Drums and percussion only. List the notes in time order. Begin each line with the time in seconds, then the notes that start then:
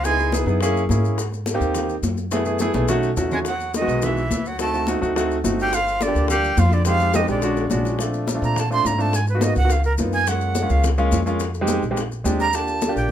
0.05 high bongo, high conga, maracas
0.19 high bongo, high conga, maracas
0.32 high bongo, high conga, maracas
0.47 high bongo, maracas
0.61 high bongo, high conga, maracas
0.75 high conga, maracas
0.89 high bongo, low bongo, high conga, maracas
1.03 high bongo, high conga, maracas
1.18 high bongo, high conga, maracas
1.32 high bongo, high conga, maracas
1.46 high bongo, high conga, maracas
1.61 high bongo, high conga, maracas
1.75 high bongo, high conga, low conga, maracas
1.89 high conga, maracas
2.03 high bongo, low bongo, high conga, maracas
2.17 high bongo, high conga, maracas
2.31 high bongo, high conga, maracas
2.45 high bongo, maracas
2.59 high bongo, high conga, maracas
2.74 high conga, maracas
2.88 high bongo, low conga, maracas
3.03 maracas
3.17 high bongo, low bongo, low conga, maracas
3.31 high bongo, low conga, maracas
3.45 high bongo, high conga, maracas
3.60 high bongo, high conga, maracas
3.74 high bongo, high conga, maracas
3.89 high bongo, high conga, maracas
4.02 high bongo, high conga, low conga, maracas
4.17 high conga, maracas
4.31 high bongo, low bongo, high conga, maracas
4.45 high bongo, high conga, maracas
4.59 high bongo, high conga, maracas
4.73 high bongo, high conga, maracas
4.87 high bongo, high conga, maracas
5.02 high bongo, maracas
5.16 high bongo, high conga, maracas
5.30 high conga, maracas
5.44 high bongo, low bongo, high conga, maracas
5.59 high bongo, high conga, maracas
5.72 high bongo, high conga, maracas
5.87 high bongo, high conga, maracas
6.01 high bongo, high conga, maracas
6.15 high bongo, high conga, maracas
6.28 high bongo, high conga, low conga, maracas
6.44 high conga, maracas
6.57 high bongo, low bongo, high conga, maracas
6.72 high bongo, high conga, maracas
6.85 high bongo, high conga, maracas
7.00 high bongo, high conga, maracas
7.14 high bongo, high conga, maracas
7.28 high bongo, maracas
7.42 high bongo, high conga, maracas
7.56 high bongo, high conga, maracas
7.70 low bongo, high conga, maracas
7.85 low bongo, high conga, maracas
7.99 high bongo, high conga, maracas
8.14 high bongo, high conga, maracas
8.27 high bongo, high conga, maracas
8.42 high bongo, high conga, maracas
8.56 high bongo, high conga, low conga, maracas
8.71 high conga, maracas
8.85 high bongo, low bongo, high conga, maracas
8.99 high bongo, high conga, maracas
9.13 high bongo, high conga, maracas
9.27 high bongo, high conga, maracas
9.41 high bongo, high conga, maracas
9.55 high bongo, maracas
9.70 high bongo, high conga, maracas
9.84 high conga, maracas
9.98 high bongo, low bongo, high conga, maracas
10.12 high bongo, high conga, maracas
10.27 high bongo, high conga, maracas
10.40 high bongo, high conga, maracas
10.55 high bongo, high conga, maracas
10.69 high bongo, high conga, maracas
10.83 high bongo, high conga, low conga, maracas
10.97 high conga, maracas
11.11 high bongo, low bongo, high conga, maracas
11.26 high bongo, high conga, maracas
11.40 high bongo, high conga, maracas
11.54 high bongo, high conga, maracas
11.68 high bongo, high conga, maracas
11.83 high bongo, maracas
11.97 high bongo, high conga, maracas
12.12 high conga, maracas
12.25 high bongo, low bongo, high conga, maracas
12.40 high bongo, high conga, maracas
12.53 high bongo, high conga, maracas
12.68 high bongo, high conga, maracas
12.82 high bongo, high conga, maracas
12.96 high bongo, high conga, maracas